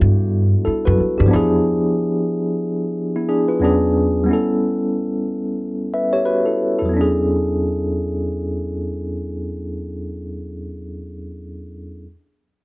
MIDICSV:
0, 0, Header, 1, 4, 480
1, 0, Start_track
1, 0, Tempo, 659341
1, 1189, Time_signature, 4, 2, 24, 8
1, 9208, End_track
2, 0, Start_track
2, 0, Title_t, "Tine electric piano"
2, 0, Program_c, 0, 4
2, 0, Control_c, 0, 64, 127
2, 0, Note_on_c, 0, 55, 66
2, 0, Note_on_c, 0, 59, 63
2, 0, Note_on_c, 0, 62, 63
2, 0, Note_on_c, 0, 64, 60
2, 0, Note_on_c, 0, 66, 71
2, 449, Note_off_c, 0, 62, 0
2, 457, Note_off_c, 0, 64, 0
2, 466, Note_off_c, 0, 66, 0
2, 473, Note_on_c, 0, 69, 59
2, 481, Note_on_c, 0, 64, 46
2, 610, Note_off_c, 0, 69, 0
2, 614, Note_off_c, 0, 64, 0
2, 621, Note_on_c, 0, 71, 61
2, 624, Note_on_c, 0, 66, 56
2, 847, Note_off_c, 0, 71, 0
2, 848, Note_off_c, 0, 66, 0
2, 858, Note_on_c, 0, 67, 57
2, 868, Note_on_c, 0, 62, 47
2, 906, Note_off_c, 0, 55, 0
2, 914, Note_off_c, 0, 59, 0
2, 917, Note_on_c, 0, 53, 74
2, 933, Note_on_c, 0, 59, 67
2, 944, Note_off_c, 0, 62, 0
2, 952, Note_on_c, 0, 62, 62
2, 957, Control_c, 0, 64, 0
2, 970, Note_on_c, 0, 64, 65
2, 989, Note_on_c, 0, 68, 83
2, 1085, Note_off_c, 0, 67, 0
2, 1087, Control_c, 0, 64, 127
2, 1881, Note_off_c, 0, 59, 0
2, 1891, Note_off_c, 0, 62, 0
2, 1901, Note_off_c, 0, 64, 0
2, 1910, Note_off_c, 0, 68, 0
2, 2300, Note_on_c, 0, 64, 53
2, 2303, Note_on_c, 0, 59, 49
2, 2387, Note_off_c, 0, 64, 0
2, 2388, Note_off_c, 0, 59, 0
2, 2392, Note_on_c, 0, 68, 64
2, 2393, Note_on_c, 0, 62, 51
2, 2530, Note_off_c, 0, 62, 0
2, 2530, Note_off_c, 0, 68, 0
2, 2535, Note_on_c, 0, 71, 51
2, 2539, Note_on_c, 0, 65, 51
2, 2584, Note_off_c, 0, 53, 0
2, 2618, Note_on_c, 0, 40, 73
2, 2621, Note_on_c, 0, 54, 59
2, 2632, Note_on_c, 0, 59, 63
2, 2637, Note_on_c, 0, 61, 61
2, 2639, Control_c, 0, 64, 0
2, 2646, Note_on_c, 0, 62, 56
2, 2652, Note_on_c, 0, 68, 68
2, 2751, Control_c, 0, 64, 127
2, 2763, Note_off_c, 0, 71, 0
2, 2765, Note_off_c, 0, 65, 0
2, 3086, Note_on_c, 0, 55, 58
2, 3095, Note_off_c, 0, 59, 0
2, 3103, Note_off_c, 0, 40, 0
2, 3104, Note_on_c, 0, 59, 60
2, 3105, Note_off_c, 0, 54, 0
2, 3113, Note_off_c, 0, 61, 0
2, 3117, Note_off_c, 0, 62, 0
2, 3120, Control_c, 0, 64, 0
2, 3121, Note_off_c, 0, 68, 0
2, 3122, Note_on_c, 0, 61, 54
2, 3139, Note_on_c, 0, 64, 60
2, 3155, Note_on_c, 0, 69, 73
2, 3234, Control_c, 0, 64, 127
2, 4300, Note_off_c, 0, 64, 0
2, 4308, Note_off_c, 0, 69, 0
2, 4322, Note_on_c, 0, 76, 55
2, 4325, Note_on_c, 0, 71, 47
2, 4455, Note_off_c, 0, 76, 0
2, 4456, Note_off_c, 0, 71, 0
2, 4460, Note_on_c, 0, 73, 59
2, 4464, Note_on_c, 0, 67, 50
2, 4547, Note_off_c, 0, 73, 0
2, 4549, Note_off_c, 0, 67, 0
2, 4553, Note_on_c, 0, 71, 62
2, 4559, Note_on_c, 0, 66, 50
2, 4690, Note_off_c, 0, 71, 0
2, 4693, Note_off_c, 0, 66, 0
2, 4699, Note_on_c, 0, 69, 53
2, 4705, Note_on_c, 0, 64, 44
2, 4925, Note_off_c, 0, 69, 0
2, 4929, Note_off_c, 0, 64, 0
2, 4940, Note_on_c, 0, 69, 47
2, 4944, Note_on_c, 0, 64, 45
2, 4962, Note_on_c, 0, 40, 62
2, 4989, Note_off_c, 0, 55, 0
2, 4990, Note_on_c, 0, 54, 56
2, 4997, Note_off_c, 0, 59, 0
2, 5006, Note_off_c, 0, 61, 0
2, 5018, Note_on_c, 0, 59, 61
2, 5037, Control_c, 0, 64, 0
2, 5050, Note_on_c, 0, 61, 57
2, 5072, Note_on_c, 0, 62, 55
2, 5104, Note_on_c, 0, 68, 72
2, 5158, Control_c, 0, 64, 127
2, 5166, Note_off_c, 0, 69, 0
2, 5168, Note_off_c, 0, 64, 0
2, 7376, Note_off_c, 0, 40, 0
2, 7404, Note_off_c, 0, 54, 0
2, 7431, Note_off_c, 0, 59, 0
2, 7463, Note_off_c, 0, 61, 0
2, 7486, Note_off_c, 0, 62, 0
2, 7517, Note_off_c, 0, 68, 0
2, 8777, Control_c, 0, 64, 0
2, 9208, End_track
3, 0, Start_track
3, 0, Title_t, "Upright bass"
3, 0, Program_c, 1, 32
3, 10, Note_on_c, 1, 43, 78
3, 380, Note_off_c, 1, 43, 0
3, 633, Note_on_c, 1, 42, 77
3, 700, Note_off_c, 1, 42, 0
3, 872, Note_on_c, 1, 43, 77
3, 939, Note_off_c, 1, 43, 0
3, 970, Note_on_c, 1, 40, 82
3, 1151, Note_off_c, 1, 40, 0
3, 9208, End_track
4, 0, Start_track
4, 0, Title_t, "Muted upright bass strokes"
4, 487, Note_on_c, 9, 29, 44
4, 560, Note_off_c, 9, 29, 0
4, 727, Note_on_c, 9, 29, 39
4, 800, Note_off_c, 9, 29, 0
4, 9208, End_track
0, 0, End_of_file